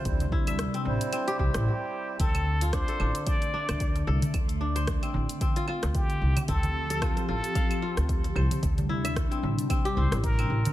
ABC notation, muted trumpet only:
X:1
M:4/4
L:1/8
Q:"Swing 16ths" 1/4=112
K:Dm
V:1 name="Muted trumpet"
z6 G2 | A2 c2 d3 z | z6 G2 | A3 A3 z2 |
z4 z c B2 |]